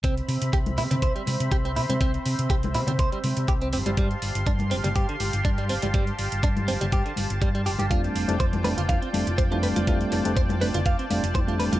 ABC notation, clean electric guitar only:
X:1
M:4/4
L:1/16
Q:"Swing 16ths" 1/4=122
K:C
V:1 name="Clean electric guitar"
C z3 G z E C c G, z2 G C E C | C z3 G z E C c G, z2 G C C G, | G, z3 D z C G, G D, z2 D G, C G, | G, z3 D z C G, G D, z2 G, G, G G |
F z3 c z B F f C z2 c F B F | F z3 c z B F f C z2 c F B F |]